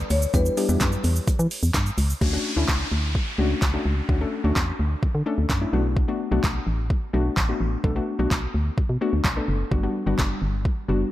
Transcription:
Already playing: G3 B3 D4 E4 A4 D5
0.10 D2 C#5, open hi-hat, shaker
0.22 shaker
0.34 E2 G3 B3 D4 E4 G4 B4, kick, closed hi-hat, shaker
0.46 shaker
0.57 G3 B3 D4 E4 G4, open hi-hat, shaker
0.69 E2 G3 B3 D4 E4 G4, shaker
0.81 F#2, kick, snare, clap, closed hi-hat, shaker
0.92 shaker
1.04 E2, open hi-hat, shaker
1.16 shaker
1.28 E3, kick, closed hi-hat, shaker
1.39 E3, shaker
1.51 open hi-hat, shaker
1.63 E2, shaker
1.74 G2, kick, snare, clap, closed hi-hat, shaker
1.86 shaker
1.98 C#2, open hi-hat, shaker
2.10 shaker
2.21 D2 A3 C#4 D4 F#4, kick, crash, downlifter
2.33 A3 C#4 D4 F#4
2.56 D2 A3 C#4 D4 E4
2.69 C#2, kick, snare, clap
2.92 D2
3.15 kick
3.38 C#2 A3 C#4 D4 F#4
3.62 C#2, kick, snare, clap
3.74 A3 C#4 D4 F#4
3.86 C#2
4.09 D2 A3 C#4 D4 F#4, kick
4.21 A3 C#4 D4 A4
4.44 D2 A3 C#4 D4 F#4
4.56 E2, kick, snare, clap
4.79 D2
5.03 D3, kick
5.15 D3
5.26 A3 C#4 D4 A4
5.38 D2
5.50 F#2, kick, snare, clap
5.61 A3 C#4 D4 E4
5.73 B1 A3 B3 D4 F#4
5.97 kick
6.08 A3 B3 D4 F#4
6.31 B1 A3 B3 D4 F#4
6.44 B1, kick, snare, clap
6.67 A1
6.90 kick
7.13 B1 A3 B3 D4 F#4
7.37 A1, kick, snare, clap
7.49 A3 B3 D4 F#4
7.61 A1
7.84 B1 A3 B3 D4 A4, kick
7.96 A3 B3 D4 F#4
8.19 B1 A3 B3 D4 F#4
8.31 B1, kick, snare, clap
8.54 D2
8.78 B2, kick
8.89 B2
9.01 A3 B3 D4 F#4
9.13 D2
9.25 B1, kick, snare, clap
9.36 A3 B3 D4 A4
9.48 F#1
9.71 G1 G3 B3 D4 F#4, kick
9.83 G3 B3 D4 F#4
10.06 G1 G3 B3 D4 F#4
10.19 F#1, kick, snare, clap
10.42 G1
10.65 kick
10.88 F#1 G3 B3 D4 F#4

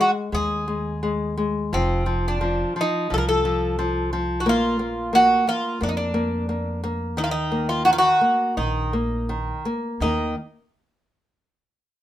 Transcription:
Already playing: G#3
0.01 F#4
0.32 D#2 G#3 G#4
0.68 G#3
1.03 G#3
1.37 G#3
1.73 F1 F3 C4
2.06 F3
2.28 D4
2.41 F3
2.76 F3
2.81 D#4
3.10 C2 F3 A4
3.18 A#4
3.29 A4
3.45 F3
3.79 F3
4.13 F3
4.40 F#4
4.46 A#1 A#3 F4
4.79 A#3
5.13 A#3 F#4
5.47 A#3 F4
5.81 F2 A#3 D4
5.89 D#4
5.97 D4
6.14 A#3
6.49 A#3
6.84 A#3
7.17 D#2 D#3 D#4
7.24 F4
7.31 D#4
7.52 A#3
7.69 F4
7.85 D#3 F#4
7.93 F4
7.98 F#4
8.21 A#3
8.57 A#1 D#3 D#4
8.93 A#3
9.29 D#3
9.65 A#3
10.00 D#2 D#3 A#3 D#4

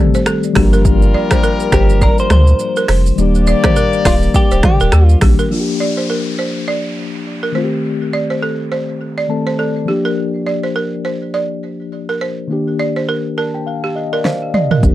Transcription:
Already playing: D#3 G3 A3 C4 A4
0.00 C4 G4
0.14 C5, shaker
0.26 A4, finger snap, cross-stick, shaker
0.43 shaker
0.53 G1 F3 G3 A#3 D4 F4 G4 A#4, finger snap, kick, cross-stick, open hi-hat
0.58 F#4
0.65 G4
0.73 A#4, shaker
0.85 kick, shaker
1.02 shaker
1.14 D5
1.31 C5, finger snap, kick, cross-stick, shaker
1.43 A#4, shaker
1.60 shaker
1.72 G1 G4 C5, finger snap, kick, cross-stick, shaker
1.90 shaker
2.01 A#4 D5, kick, shaker
2.18 C5, shaker
2.30 D2 C5, finger snap, cross-stick, mid tom, shaker
2.47 shaker
2.59 shaker
2.76 A#4, shaker
2.88 F1 C5, finger snap, cross-stick, open hi-hat
3.06 shaker
3.16 D#1 D#3 G3 A#3 D4 G4 D5, shaker
3.21 G4
3.35 shaker
3.47 D5, shaker
3.64 C5, finger snap, kick, cross-stick, mid tom, shaker
3.76 A#4, shaker
3.93 shaker
4.05 D1 F4 D5, finger snap, kick, cross-stick, open hi-hat, shaker
4.22 shaker
4.34 G4, kick, shaker
4.51 D1 C5, shaker
4.63 G4, finger snap, kick, cross-stick, mid tom, shaker
4.80 D#1 A#4, shaker
4.92 D#2 G4, finger snap, cross-stick, shaker
5.07 F4, shaker
5.21 A#1 D#3 G3 A#3 D4 G4, finger snap, kick, cross-stick, open hi-hat, shaker
5.39 A#4, shaker
5.49 F3 A#3 D4, downlifter
5.54 F4
5.60 G4
5.80 D5
5.97 C5
6.10 A#4
6.39 C5
6.68 D5
7.43 A#4
7.52 D#3 A3 C4 C5
7.57 F4
7.64 G4
8.13 D5
8.30 C5
8.43 A4
8.72 C5
9.18 D5
9.28 D#3 A3 C4 A4 A5
9.47 C5
9.59 A4 D5
9.86 F3 A#3 D4 G4
9.90 G4
10.05 A#4
10.46 D5
10.63 C5
10.76 A#4
11.05 C5
11.34 D5
12.09 A#4
12.21 C5
12.48 D#3 A#3 D4
12.53 G4
12.79 D5
12.96 C5
13.09 A#4
13.38 A#4 A5
13.54 G5
13.66 F5
13.84 G4
13.96 D#5
14.13 A#4 D5
14.25 C5 F5, snare
14.54 D5 D#5, mid tom
14.71 A#4, floor tom
14.81 G1 F3 A#3 D4, kick, shaker
14.86 G4

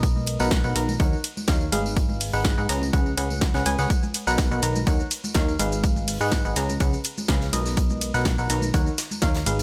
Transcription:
Already playing: B1 B2 D#4 A#4 B4 D#5
0.03 kick, closed hi-hat, ride, tambourine
0.16 tambourine, high conga
0.26 closed hi-hat, open hi-hat, ride
0.39 B1 B2 D#4 A#4 B4 F#5, snare, tambourine
0.51 kick, snare, closed hi-hat, ride, tambourine, high conga
0.64 B1 B2 D#4 A#4 B4 F#5, tambourine
0.76 B1 D#3 D#4 A#4 B4 A#5, closed hi-hat, open hi-hat, ride
0.89 tambourine, high conga
1.00 D#2 D#3 D#4 A#4 C#5 F#5, kick, closed hi-hat, ride, tambourine
1.13 tambourine
1.24 closed hi-hat, open hi-hat, ride
1.37 tambourine, high conga
1.48 D#2 D#3 D#4 A#4 C#5 F5, kick, snare, closed hi-hat, ride, tambourine
1.61 tambourine
1.72 G#1 G#3 D#4 G#4 B4 F5, closed hi-hat, open hi-hat, ride, high conga
1.86 tambourine
1.96 kick, closed hi-hat, ride, tambourine
2.09 tambourine, high conga
2.20 open hi-hat, ride
2.33 G#1 G#3 D#4 G#4 B4 F#5, tambourine
2.45 kick, snare, closed hi-hat, ride, tambourine, high conga
2.58 G#2 D#4 G#4 B4 F#5, tambourine
2.69 C#2 C#3 C#4 G#4 B4 A#5, snare, closed hi-hat, open hi-hat, ride
2.82 tambourine, high conga
2.93 C#2 C#3 C#4 G#4 B4 F#5, kick, closed hi-hat, ride, tambourine
3.06 tambourine
3.17 C#2 C#3 C#4 G#4 B4 F#5, closed hi-hat, open hi-hat, ride
3.30 tambourine, high conga
3.41 kick, snare, closed hi-hat, ride, tambourine
3.54 C#2 C#3 C#4 G#4 B4 F#5, snare, tambourine
3.66 C#2 C#4 G#4 B4 G#5, closed hi-hat, open hi-hat, ride, high conga
3.78 C#2 C#4 G#4 B4 F#5, snare, tambourine
3.90 kick, closed hi-hat, ride, tambourine, shaker
4.03 tambourine, high conga, shaker
4.14 closed hi-hat, open hi-hat, ride, shaker
4.27 B1 B2 D#4 A#4 B4 F#5, snare, tambourine, shaker
4.38 kick, snare, closed hi-hat, ride, tambourine, high conga, shaker
4.51 B1 B2 D#4 A#4 B4 F#5, tambourine, shaker
4.62 B1 D#3 D#4 A#4 B4 A#5, closed hi-hat, open hi-hat, ride, shaker
4.75 tambourine, high conga, shaker
4.87 D#2 D#3 D#4 A#4 C#5 F#5, kick, closed hi-hat, ride, tambourine, shaker
4.99 tambourine, shaker
5.11 closed hi-hat, open hi-hat, ride, shaker
5.24 tambourine, high conga, shaker
5.34 D#2 D#3 D#4 A#4 C#5 F5, kick, snare, closed hi-hat, ride, tambourine, shaker
5.48 tambourine, shaker
5.59 G#1 G#3 D#4 G#4 B4 F5, closed hi-hat, open hi-hat, ride, high conga, shaker
5.72 tambourine, shaker
5.84 kick, closed hi-hat, ride, tambourine, shaker
5.96 tambourine, high conga, shaker
6.08 open hi-hat, ride, shaker
6.21 G#2 G#3 D#4 G#4 B4 F#5, tambourine, shaker
6.32 kick, snare, closed hi-hat, ride, tambourine, high conga, shaker
6.45 G#1 D#4 G#4 B4 F#5, tambourine, shaker
6.56 C#2 C#3 C#4 G#4 B4 A#5, snare, closed hi-hat, open hi-hat, ride, shaker
6.69 tambourine, high conga, shaker
6.80 C#2 C#3 C#4 G#4 B4 F#5, kick, closed hi-hat, ride, tambourine, shaker
6.93 tambourine, shaker
7.04 closed hi-hat, open hi-hat, ride, shaker
7.18 tambourine, high conga, shaker
7.28 C#2 C#3 C#4 G#4 B4 F5, kick, snare, closed hi-hat, ride, shaker
7.41 snare, tambourine, shaker
7.53 B1 B2 D#4 A#4 B4 D#5, closed hi-hat, open hi-hat, ride, high conga, shaker
7.65 snare, tambourine, shaker
7.77 kick, closed hi-hat, ride, tambourine, shaker
7.89 tambourine, high conga, shaker
8.01 closed hi-hat, open hi-hat, ride, shaker
8.14 B1 B2 D#4 A#4 B4 F#5, snare, tambourine, shaker
8.25 kick, snare, closed hi-hat, ride, tambourine, high conga, shaker
8.38 B1 B2 D#4 A#4 B4 F#5, tambourine, shaker
8.50 B1 D#3 D#4 A#4 B4 A#5, closed hi-hat, open hi-hat, ride, shaker
8.61 tambourine, high conga, shaker
8.74 D#2 D#3 D#4 A#4 C#5 F#5, kick, closed hi-hat, ride, tambourine, shaker
8.86 tambourine, shaker
8.98 snare, closed hi-hat, open hi-hat, ride, shaker
9.11 tambourine, high conga, shaker
9.22 D#2 D#3 D#4 A#4 C#5 F5, kick, snare, closed hi-hat, ride, tambourine, shaker
9.35 snare, closed hi-hat, tambourine, shaker
9.46 G#1 G#3 D#4 G#4 B4 F5, open hi-hat, ride, high conga, shaker
9.59 closed hi-hat, tambourine, shaker

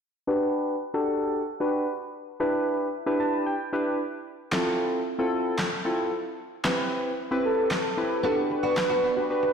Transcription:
0.27 D4 F#4 G4 B4
0.94 D4 F#4 G4 A4
1.60 D4 F#4 G4 B4
2.40 D4 E4 G4 B4
3.06 D4 E4 G4 B4
3.20 A5
3.46 G5
3.73 D4 E4 G4 B4
4.52 C4 E4 F4 A4, snare, clap
5.19 C4 E4 F4 A4
5.59 snare, clap
5.85 C4 E4 F4 A4
6.65 C4 E4 G4 B4, snare, clap
7.31 C4 E4 G4 B4
7.45 A4
7.71 snare, clap
7.97 C4 E4 G4 B4
8.23 B3 D4 F#4 G4 A4 B4
8.37 muted clean electric guitar stroke
8.50 B4, muted clean electric guitar stroke
8.63 B3 D4 F#4
8.77 snare, clap
8.90 B3 D4 F#4
9.03 B3 D4 F#4
9.17 D4 F#4 G4 B4, muted clean electric guitar stroke
9.30 D4 F#4 G4 B4
9.43 muted clean electric guitar stroke

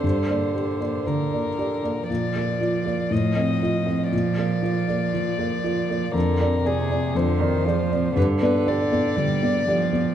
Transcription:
Already playing: D3 C5
0.04 G2
0.29 A#3 D5
0.55 G4 D5
0.81 A#3 D5
1.07 D3 A#4
1.33 A#3 D5
1.59 G4 D5
1.83 A#3 D5
2.09 A#2 F3 D5
2.36 A#3 D5
2.60 F4 D5
2.86 A#3 D5
3.11 A2 D#5
3.36 C4 D#5
3.62 F4 D#5
3.86 C4 D#5
4.12 A#2 D5
4.37 A#3 D5
4.62 F4 D5
4.88 A#3 D5
5.14 F3
5.39 A#3 D5
5.64 F4 D5
5.89 A#3 D5
6.14 F2 D3 A#4
6.40 C4 D5
6.64 C3 G#4 D5
6.90 C4 D5
7.14 F2 D3 C5
7.39 D#3 C4 D5
7.65 F3 G#4 D5
7.91 C4 D5
8.16 G2 D3 B4
8.41 B3 B4 D5
8.67 G4 D5
8.92 B3 D5
9.16 D3 G3
9.42 B3 D5
9.67 F3 G4 D5
9.93 B3 D5

